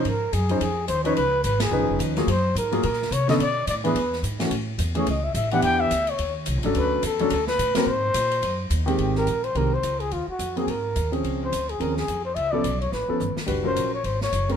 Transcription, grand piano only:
X:1
M:4/4
L:1/8
Q:"Swing" 1/4=214
K:Abmix
V:1 name="Grand piano"
z3 [F,DEc] z3 [F,DE_c] | z4 [F,DE_c]3 [G,B,FA] | z3 [G,B,FA] z3 [=D,_C_D=A] | z3 [_F,_C=DA] z3 [=E,=A,_DG] |
z3 [=E,=A,^C^G] z3 [E,_C=D=G]- | [=E,_C=D=G]2 z4 z [_G,_D=D=A]- | [G,D=D=A]2 z [^F,^CDA] z3 [F,B,=CB] | z6 z [E,A,C=G]- |
[K:Ab] [E,A,CG]2 z2 [E,A,CG] z3 | z3 [_G,B,CA] z3 [F,CDA]- | [F,CDA]2 z2 [F,CDA] z3 | z [F,_CD=A] z3 [F,CDA] z2 |
[G,=D_G_c] [_G,_DFB]2 z4 [A,=CDB] |]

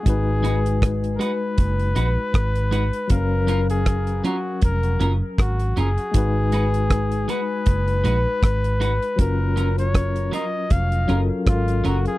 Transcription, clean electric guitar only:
X:1
M:4/4
L:1/8
Q:"Swing 16ths" 1/4=79
K:F#
V:1 name="Clean electric guitar"
z [G,DFB] z [G,DFB] z [G,DFB] z [G,DFB] | z [F,CEA] z [F,CEA] z [F,CEA] z [F,CEA] | z [G,DFB] z [G,DFB] z [G,DFB] z [G,DFB] | z [F,CEA] z [F,CEA] z [F,CEA] z [F,CEA] |]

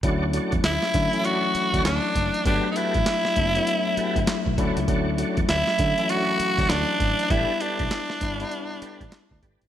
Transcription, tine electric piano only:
X:1
M:4/4
L:1/16
Q:"Swing 16ths" 1/4=99
K:D
V:1 name="Tine electric piano"
[F,A,CE]4- [F,A,CE] z [F,A,CE] [E,F,A,CE]6- [E,F,A,CE] z2 | [F,A,B,D]4- [F,A,B,D] z [F,A,B,D] [F,A,B,E]6- [F,A,B,E] [F,A,CE]2- | [F,A,CE]4- [F,A,CE] z [F,A,CE] [E,F,A,CE]6- [E,F,A,CE] z2 | [G,B,DE]4- [G,B,DE] z [G,B,DE] [G,B,DE]6- [G,B,DE] z2 |]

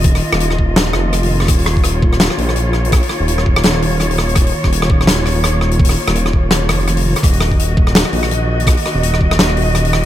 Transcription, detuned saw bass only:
X:1
M:4/4
L:1/16
Q:"Swing 16ths" 1/4=167
K:Ebm
V:1 name="Detuned saw bass" clef=bass
E,,,2 z E,,,6- E,,, F,,,6 | E,,,8- E,,, z B,,,6- | B,,, z2 E,,,12- E,,,- | E,,,2 z E,,,12- E,,,- |
E,,,2 z E,,,6- E,,, F,,,4- F,,, z | E,,,8- E,,, z B,,,6- | B,,, z2 E,,,12- E,,, |]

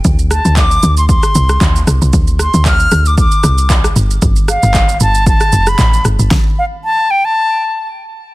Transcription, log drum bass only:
X:1
M:4/4
L:1/16
Q:"Swing 16ths" 1/4=115
K:Gmix
V:1 name="Log drum bass" clef=bass
D,,3 D,,3 D,,3 z C,,2 D,,2 C,, C,, | D,,3 D,,3 D,,3 z C,,4 G,,,2 | G,,,3 G,,,3 G,,,3 z F,,,2 A,,,2 G,,, G,,, | z16 |]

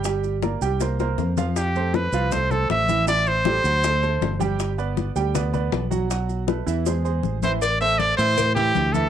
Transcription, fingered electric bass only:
X:1
M:4/4
L:1/8
Q:1/4=158
K:Am
V:1 name="Fingered electric bass" clef=bass
G,,,3 C,,3 F,,2- | F,,3 C,,3 A,,,2- | A,,,3 D,,3 G,,,2- | G,,,3 D,,3 B,,,2- |
B,,,3 E,,3 A,,,2- | A,,,3 A,,3 D,,2 |]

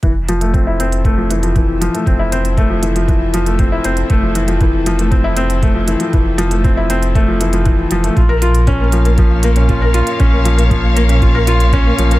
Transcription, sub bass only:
X:1
M:4/4
L:1/8
Q:1/4=118
K:F
V:1 name="Sub bass" clef=bass
F,,,6- F,,, z | F,,,6- F,,, F,,, | F,,,6- F,,, z | F,,,6- F,,, F,,, |
B,,,6- B,,, z | B,,,6- B,,, B,,, |]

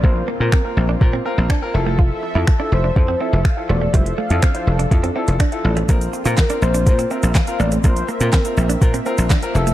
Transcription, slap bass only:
X:1
M:4/4
L:1/16
Q:1/4=123
K:Bblyd
V:1 name="Slap bass" clef=bass
B,,,2 z B,, z2 B,,,2 B,,2 z B,,, z2 F,,,2- | F,,,2 z F,, z2 F,,,2 F,,2 z F,,, z2 E,,,2 | F,,,2 z F,, z2 F,,,2 F,,2 z F,,, z2 A,,,2 | B,,,2 z B,, z2 B,,,2 B,,2 z B,,, z2 A,,,2 |
B,,,2 z B,, z2 B,,,2 B,,2 z B,,, z2 F,,,2 |]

